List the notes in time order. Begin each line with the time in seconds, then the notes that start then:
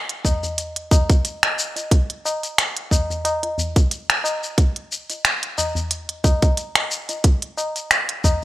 0.09 closed hi-hat
0.25 kick, tabla na, tabla ge, shaker
0.43 tabla ge, shaker
0.58 closed hi-hat, shaker
0.76 closed hi-hat
0.91 kick, tabla na, tabla ge, shaker
1.10 kick, closed hi-hat, tabla na, shaker
1.25 closed hi-hat, shaker
1.43 finger snap, closed hi-hat, tabla na
1.59 shaker
1.76 closed hi-hat, tabla tin, shaker
1.91 kick, closed hi-hat, shaker
2.10 closed hi-hat
2.25 tabla na, shaker
2.43 closed hi-hat, shaker
2.58 finger snap, closed hi-hat, shaker
2.77 closed hi-hat
2.91 kick, tabla na, tabla ge, shaker
3.10 tabla ge, shaker
3.25 closed hi-hat, tabla na, shaker
3.43 closed hi-hat, tabla tin
3.58 tabla ge, shaker
3.76 kick, closed hi-hat, shaker
3.91 closed hi-hat, shaker
4.10 finger snap, closed hi-hat
4.24 tabla na, shaker
4.43 shaker
4.58 kick, closed hi-hat, shaker
4.76 closed hi-hat
4.92 shaker
5.10 closed hi-hat, tabla tin, shaker
5.25 finger snap, closed hi-hat, shaker
5.43 closed hi-hat
5.58 tabla na, tabla ge, shaker
5.75 tabla ge, shaker
5.91 closed hi-hat, shaker
6.09 closed hi-hat
6.24 kick, tabla na, tabla ge, shaker
6.42 kick, closed hi-hat, tabla na, shaker
6.57 closed hi-hat, shaker
6.75 finger snap, closed hi-hat, tabla na
6.91 shaker
7.09 closed hi-hat, tabla tin, shaker
7.24 kick, closed hi-hat, shaker
7.42 closed hi-hat
7.57 tabla na, shaker
7.76 closed hi-hat, shaker
7.91 finger snap, closed hi-hat, shaker
8.09 closed hi-hat
8.24 kick, tabla na, tabla ge, shaker